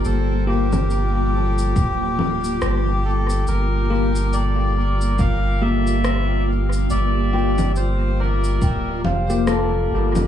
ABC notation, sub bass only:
X:1
M:4/4
L:1/8
Q:"Swing 16ths" 1/4=70
K:Gm
V:1 name="Sub bass" clef=bass
G,,,4 D,,,2 G,,,2 | G,,,8 | G,,,4 D,,, F,,,2 G,,, |]